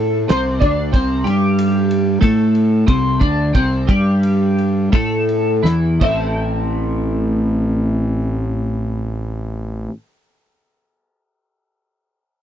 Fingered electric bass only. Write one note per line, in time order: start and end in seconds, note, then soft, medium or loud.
0.00 0.25 A2 medium
0.30 0.59 C2 medium
0.62 0.91 D2 medium
0.94 1.23 C2 medium
1.25 2.18 G2 medium
2.22 2.84 A2 medium
2.88 3.19 C2 medium
3.21 3.52 D2 medium
3.55 3.86 C2 medium
3.89 4.89 G2 medium
4.93 5.61 A2 medium
5.64 5.98 E2 medium
6.02 9.87 A1 medium